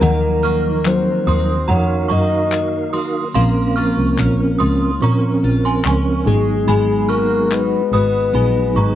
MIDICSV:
0, 0, Header, 1, 7, 480
1, 0, Start_track
1, 0, Tempo, 832755
1, 9, Time_signature, 4, 2, 24, 8
1, 5159, End_track
2, 0, Start_track
2, 0, Title_t, "Synth bell"
2, 0, Program_c, 0, 98
2, 7, Note_on_c, 0, 82, 84
2, 13, Note_on_c, 0, 78, 69
2, 236, Note_off_c, 0, 82, 0
2, 239, Note_off_c, 0, 78, 0
2, 249, Note_on_c, 0, 89, 79
2, 256, Note_on_c, 0, 85, 57
2, 477, Note_off_c, 0, 89, 0
2, 480, Note_off_c, 0, 85, 0
2, 733, Note_on_c, 0, 87, 81
2, 740, Note_on_c, 0, 84, 61
2, 959, Note_off_c, 0, 87, 0
2, 963, Note_off_c, 0, 84, 0
2, 967, Note_on_c, 0, 82, 82
2, 971, Note_on_c, 0, 78, 64
2, 1196, Note_off_c, 0, 82, 0
2, 1198, Note_off_c, 0, 78, 0
2, 1201, Note_on_c, 0, 85, 76
2, 1207, Note_on_c, 0, 82, 62
2, 1319, Note_off_c, 0, 85, 0
2, 1322, Note_off_c, 0, 82, 0
2, 1688, Note_on_c, 0, 87, 68
2, 1691, Note_on_c, 0, 84, 59
2, 1802, Note_off_c, 0, 87, 0
2, 1804, Note_off_c, 0, 84, 0
2, 1928, Note_on_c, 0, 84, 88
2, 1932, Note_on_c, 0, 77, 79
2, 2156, Note_off_c, 0, 84, 0
2, 2158, Note_off_c, 0, 77, 0
2, 2166, Note_on_c, 0, 89, 71
2, 2171, Note_on_c, 0, 85, 58
2, 2395, Note_off_c, 0, 89, 0
2, 2398, Note_off_c, 0, 85, 0
2, 2643, Note_on_c, 0, 87, 69
2, 2650, Note_on_c, 0, 84, 60
2, 2874, Note_off_c, 0, 87, 0
2, 2877, Note_off_c, 0, 84, 0
2, 2895, Note_on_c, 0, 85, 81
2, 2902, Note_on_c, 0, 82, 68
2, 3006, Note_off_c, 0, 85, 0
2, 3010, Note_off_c, 0, 82, 0
2, 3257, Note_on_c, 0, 84, 74
2, 3260, Note_on_c, 0, 80, 54
2, 3367, Note_off_c, 0, 84, 0
2, 3369, Note_off_c, 0, 80, 0
2, 3377, Note_on_c, 0, 85, 80
2, 3384, Note_on_c, 0, 80, 55
2, 3711, Note_off_c, 0, 85, 0
2, 3715, Note_off_c, 0, 80, 0
2, 3849, Note_on_c, 0, 83, 92
2, 3854, Note_on_c, 0, 80, 66
2, 4077, Note_off_c, 0, 83, 0
2, 4080, Note_off_c, 0, 80, 0
2, 4085, Note_on_c, 0, 89, 78
2, 4087, Note_on_c, 0, 85, 58
2, 4315, Note_off_c, 0, 89, 0
2, 4316, Note_off_c, 0, 85, 0
2, 4571, Note_on_c, 0, 87, 77
2, 4575, Note_on_c, 0, 83, 59
2, 4798, Note_off_c, 0, 87, 0
2, 4800, Note_off_c, 0, 83, 0
2, 4811, Note_on_c, 0, 83, 79
2, 4813, Note_on_c, 0, 80, 60
2, 5038, Note_off_c, 0, 83, 0
2, 5039, Note_off_c, 0, 80, 0
2, 5050, Note_on_c, 0, 85, 75
2, 5055, Note_on_c, 0, 82, 58
2, 5159, Note_off_c, 0, 82, 0
2, 5159, Note_off_c, 0, 85, 0
2, 5159, End_track
3, 0, Start_track
3, 0, Title_t, "Soft synth lead"
3, 0, Program_c, 1, 80
3, 0, Note_on_c, 1, 70, 109
3, 500, Note_on_c, 1, 72, 105
3, 508, Note_off_c, 1, 70, 0
3, 734, Note_off_c, 1, 72, 0
3, 738, Note_on_c, 1, 72, 97
3, 984, Note_on_c, 1, 73, 98
3, 993, Note_off_c, 1, 72, 0
3, 1216, Note_off_c, 1, 73, 0
3, 1222, Note_on_c, 1, 75, 114
3, 1672, Note_off_c, 1, 75, 0
3, 3611, Note_on_c, 1, 68, 98
3, 4087, Note_on_c, 1, 70, 103
3, 4095, Note_off_c, 1, 68, 0
3, 4340, Note_on_c, 1, 71, 111
3, 4349, Note_off_c, 1, 70, 0
3, 4575, Note_off_c, 1, 71, 0
3, 4577, Note_on_c, 1, 71, 104
3, 5159, Note_off_c, 1, 71, 0
3, 5159, End_track
4, 0, Start_track
4, 0, Title_t, "Tonewheel organ"
4, 0, Program_c, 2, 16
4, 3, Note_on_c, 2, 54, 80
4, 10, Note_on_c, 2, 63, 68
4, 13, Note_on_c, 2, 53, 66
4, 17, Note_on_c, 2, 70, 86
4, 906, Note_off_c, 2, 54, 0
4, 910, Note_off_c, 2, 63, 0
4, 911, Note_off_c, 2, 53, 0
4, 913, Note_off_c, 2, 70, 0
4, 965, Note_on_c, 2, 66, 73
4, 970, Note_on_c, 2, 63, 77
4, 975, Note_on_c, 2, 77, 65
4, 979, Note_on_c, 2, 69, 70
4, 1011, Note_off_c, 2, 69, 0
4, 1017, Note_on_c, 2, 70, 85
4, 1867, Note_off_c, 2, 66, 0
4, 1870, Note_off_c, 2, 63, 0
4, 1872, Note_off_c, 2, 77, 0
4, 1893, Note_off_c, 2, 70, 0
4, 1924, Note_on_c, 2, 53, 100
4, 1927, Note_on_c, 2, 60, 82
4, 1931, Note_on_c, 2, 61, 81
4, 1937, Note_on_c, 2, 70, 90
4, 2827, Note_off_c, 2, 53, 0
4, 2828, Note_off_c, 2, 60, 0
4, 2830, Note_off_c, 2, 61, 0
4, 2833, Note_off_c, 2, 70, 0
4, 2882, Note_on_c, 2, 53, 88
4, 2887, Note_on_c, 2, 60, 88
4, 2894, Note_on_c, 2, 61, 80
4, 2894, Note_on_c, 2, 70, 108
4, 3602, Note_on_c, 2, 54, 82
4, 3605, Note_off_c, 2, 53, 0
4, 3608, Note_off_c, 2, 60, 0
4, 3609, Note_on_c, 2, 59, 71
4, 3610, Note_on_c, 2, 63, 75
4, 3611, Note_off_c, 2, 61, 0
4, 3612, Note_off_c, 2, 70, 0
4, 3616, Note_on_c, 2, 68, 82
4, 4506, Note_off_c, 2, 54, 0
4, 4509, Note_off_c, 2, 59, 0
4, 4510, Note_off_c, 2, 63, 0
4, 4513, Note_off_c, 2, 68, 0
4, 4797, Note_on_c, 2, 54, 83
4, 4803, Note_on_c, 2, 59, 70
4, 4807, Note_on_c, 2, 63, 64
4, 4811, Note_on_c, 2, 68, 83
4, 5159, Note_off_c, 2, 54, 0
4, 5159, Note_off_c, 2, 59, 0
4, 5159, Note_off_c, 2, 63, 0
4, 5159, Note_off_c, 2, 68, 0
4, 5159, End_track
5, 0, Start_track
5, 0, Title_t, "Steel-string acoustic guitar"
5, 0, Program_c, 3, 25
5, 12, Note_on_c, 3, 51, 87
5, 246, Note_on_c, 3, 58, 65
5, 489, Note_on_c, 3, 54, 66
5, 731, Note_off_c, 3, 58, 0
5, 733, Note_on_c, 3, 58, 56
5, 969, Note_off_c, 3, 54, 0
5, 1212, Note_off_c, 3, 58, 0
5, 1215, Note_on_c, 3, 58, 62
5, 1447, Note_on_c, 3, 54, 59
5, 1689, Note_off_c, 3, 58, 0
5, 1691, Note_on_c, 3, 58, 50
5, 1928, Note_off_c, 3, 54, 0
5, 1930, Note_off_c, 3, 51, 0
5, 1933, Note_off_c, 3, 58, 0
5, 1933, Note_on_c, 3, 58, 85
5, 2177, Note_on_c, 3, 65, 59
5, 2411, Note_on_c, 3, 61, 69
5, 2646, Note_off_c, 3, 65, 0
5, 2652, Note_on_c, 3, 65, 59
5, 2889, Note_off_c, 3, 61, 0
5, 2896, Note_on_c, 3, 61, 66
5, 3127, Note_off_c, 3, 65, 0
5, 3134, Note_on_c, 3, 65, 58
5, 3366, Note_off_c, 3, 61, 0
5, 3373, Note_on_c, 3, 61, 63
5, 3611, Note_off_c, 3, 58, 0
5, 3614, Note_on_c, 3, 56, 72
5, 3659, Note_off_c, 3, 61, 0
5, 3659, Note_off_c, 3, 65, 0
5, 3846, Note_off_c, 3, 56, 0
5, 3848, Note_on_c, 3, 56, 81
5, 4088, Note_on_c, 3, 66, 64
5, 4329, Note_on_c, 3, 63, 65
5, 4562, Note_off_c, 3, 66, 0
5, 4569, Note_on_c, 3, 66, 51
5, 4797, Note_off_c, 3, 63, 0
5, 4804, Note_on_c, 3, 63, 57
5, 5041, Note_off_c, 3, 66, 0
5, 5048, Note_on_c, 3, 66, 51
5, 5159, Note_off_c, 3, 56, 0
5, 5159, Note_off_c, 3, 63, 0
5, 5159, Note_off_c, 3, 66, 0
5, 5159, End_track
6, 0, Start_track
6, 0, Title_t, "Double bass"
6, 0, Program_c, 4, 43
6, 9, Note_on_c, 4, 39, 99
6, 586, Note_off_c, 4, 39, 0
6, 734, Note_on_c, 4, 39, 84
6, 924, Note_off_c, 4, 39, 0
6, 973, Note_on_c, 4, 41, 93
6, 1163, Note_off_c, 4, 41, 0
6, 1212, Note_on_c, 4, 42, 87
6, 1594, Note_off_c, 4, 42, 0
6, 1932, Note_on_c, 4, 34, 95
6, 2218, Note_off_c, 4, 34, 0
6, 2291, Note_on_c, 4, 36, 65
6, 2386, Note_off_c, 4, 36, 0
6, 2409, Note_on_c, 4, 34, 84
6, 2601, Note_off_c, 4, 34, 0
6, 2651, Note_on_c, 4, 37, 75
6, 2842, Note_off_c, 4, 37, 0
6, 2891, Note_on_c, 4, 46, 101
6, 3082, Note_off_c, 4, 46, 0
6, 3130, Note_on_c, 4, 34, 77
6, 3322, Note_off_c, 4, 34, 0
6, 3372, Note_on_c, 4, 37, 79
6, 3562, Note_off_c, 4, 37, 0
6, 3608, Note_on_c, 4, 32, 93
6, 3800, Note_off_c, 4, 32, 0
6, 3844, Note_on_c, 4, 32, 89
6, 4424, Note_off_c, 4, 32, 0
6, 4564, Note_on_c, 4, 32, 86
6, 4758, Note_off_c, 4, 32, 0
6, 4807, Note_on_c, 4, 34, 84
6, 5000, Note_off_c, 4, 34, 0
6, 5041, Note_on_c, 4, 32, 85
6, 5159, Note_off_c, 4, 32, 0
6, 5159, End_track
7, 0, Start_track
7, 0, Title_t, "Drums"
7, 491, Note_on_c, 9, 39, 72
7, 549, Note_off_c, 9, 39, 0
7, 1451, Note_on_c, 9, 39, 98
7, 1509, Note_off_c, 9, 39, 0
7, 2410, Note_on_c, 9, 39, 63
7, 2468, Note_off_c, 9, 39, 0
7, 3369, Note_on_c, 9, 39, 93
7, 3427, Note_off_c, 9, 39, 0
7, 4332, Note_on_c, 9, 39, 66
7, 4389, Note_off_c, 9, 39, 0
7, 5159, End_track
0, 0, End_of_file